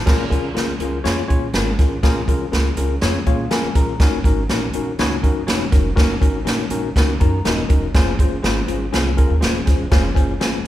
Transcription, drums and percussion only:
0.07 kick loud
0.07 snare loud
0.07 crash medium
0.31 kick medium
0.31 closed hi-hat medium
0.57 snare medium
0.57 closed hi-hat medium
0.80 closed hi-hat medium
1.05 snare medium
1.05 closed hi-hat medium
1.30 kick medium
1.30 closed hi-hat medium
1.54 snare loud
1.54 closed hi-hat medium
1.79 kick loud
1.79 snare soft
1.79 closed hi-hat medium
2.03 kick loud
2.03 snare loud
2.03 closed hi-hat medium
2.28 kick medium
2.28 closed hi-hat medium
2.53 snare medium
2.53 closed hi-hat medium
2.77 closed hi-hat medium
3.02 snare loud
3.02 closed hi-hat medium
3.27 kick medium
3.27 closed hi-hat soft
3.51 snare loud
3.51 closed hi-hat medium
3.75 kick medium
3.75 closed hi-hat medium
4.00 kick loud
4.00 snare medium
4.00 closed hi-hat medium
4.24 kick medium
4.24 closed hi-hat medium
4.49 snare medium
4.49 closed hi-hat medium
4.74 closed hi-hat medium
4.99 snare loud
4.99 closed hi-hat medium
5.24 kick medium
5.24 closed hi-hat medium
5.48 snare loud
5.48 closed hi-hat medium
5.72 kick loud
5.72 snare soft
5.72 closed hi-hat medium
5.97 kick loud
5.97 snare loud
5.97 closed hi-hat medium
6.22 kick medium
6.22 closed hi-hat medium
6.47 snare loud
6.47 closed hi-hat medium
6.70 closed hi-hat medium
6.96 kick medium
6.96 snare loud
6.96 closed hi-hat medium
7.21 kick medium
7.21 closed hi-hat soft
7.45 snare loud
7.45 closed hi-hat medium
7.70 kick loud
7.70 closed hi-hat medium
7.95 kick loud
7.95 snare loud
7.95 closed hi-hat medium
8.19 kick medium
8.19 closed hi-hat medium
8.44 snare loud
8.44 closed hi-hat medium
8.68 closed hi-hat medium
8.94 snare loud
8.94 closed hi-hat medium
9.18 kick medium
9.18 closed hi-hat soft
9.42 snare loud
9.42 closed hi-hat medium
9.67 kick medium
9.67 snare soft
9.67 closed hi-hat medium
9.92 kick loud
9.92 snare loud
9.92 closed hi-hat medium
10.16 kick medium
10.16 closed hi-hat medium
10.41 snare loud
10.41 closed hi-hat medium

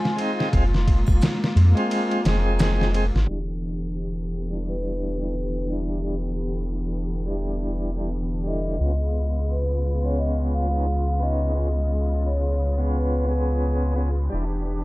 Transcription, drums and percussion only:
0.05 snare soft
0.18 ride medium
0.40 snare soft
0.53 kick loud
0.53 ride medium
0.74 snare soft
0.88 kick medium
0.88 ride medium
1.07 kick medium
1.07 triangle medium
1.21 snare loud
1.21 ride medium
1.21 maracas medium
1.44 snare medium
1.57 ride medium
1.77 ride soft
1.91 ride medium
2.11 ride soft
2.25 snare loud
2.25 ride medium
2.59 snare loud
2.59 ride medium
2.59 maracas medium
2.81 snare soft
2.94 ride medium
3.16 snare soft

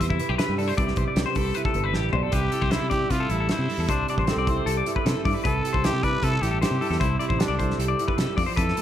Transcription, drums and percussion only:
0.01 kick medium
0.01 closed hi-hat medium
0.10 kick medium
0.19 closed hi-hat medium
0.39 snare loud
0.39 closed hi-hat medium
0.59 open hi-hat medium
0.78 kick medium
0.78 closed hi-hat medium
0.88 snare soft
0.96 kick medium
0.96 closed hi-hat medium
1.16 snare medium
1.16 closed hi-hat medium
1.35 kick medium
1.35 open hi-hat medium
1.55 closed hi-hat medium
1.65 kick medium
1.74 closed hi-hat soft
1.94 snare soft
2.13 floor tom medium
2.32 kick medium
2.32 closed hi-hat medium
2.52 closed hi-hat medium
2.62 kick medium
2.71 snare medium
2.71 closed hi-hat medium
2.91 kick medium
2.91 closed hi-hat soft
3.10 kick medium
3.10 closed hi-hat medium
3.30 closed hi-hat medium
3.49 snare loud
3.49 closed hi-hat medium
3.70 open hi-hat medium
3.88 kick loud
3.88 closed hi-hat medium
4.08 closed hi-hat soft
4.18 kick medium
4.27 snare medium
4.27 closed hi-hat medium
4.47 kick medium
4.47 closed hi-hat soft
4.67 closed hi-hat medium
4.86 closed hi-hat medium
4.96 kick medium
5.06 snare loud
5.06 closed hi-hat medium
5.25 kick medium
5.25 open hi-hat medium
5.45 kick loud
5.45 closed hi-hat medium
5.65 closed hi-hat medium
5.74 kick medium
5.84 snare loud
5.84 closed hi-hat medium
6.03 kick medium
6.03 closed hi-hat medium
6.23 kick medium
6.23 closed hi-hat medium
6.43 closed hi-hat medium
6.62 snare loud
6.62 closed hi-hat medium
6.82 open hi-hat medium
6.92 snare soft
7.01 kick loud
7.01 closed hi-hat medium
7.20 closed hi-hat medium
7.30 kick medium
7.40 snare loud
7.40 closed hi-hat medium
7.59 kick medium
7.59 closed hi-hat medium
7.70 snare soft
7.80 closed hi-hat medium
7.99 closed hi-hat medium
8.08 kick medium
8.18 snare loud
8.18 closed hi-hat medium
8.38 kick medium
8.38 open hi-hat medium
8.57 kick loud
8.57 closed hi-hat medium
8.68 snare soft
8.77 closed hi-hat medium

